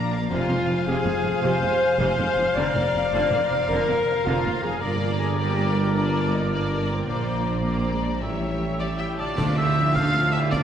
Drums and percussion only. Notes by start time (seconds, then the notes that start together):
9.38 concert bass drum, snare, crash, tam-tam
9.96 concert bass drum, snare
10.52 concert bass drum, snare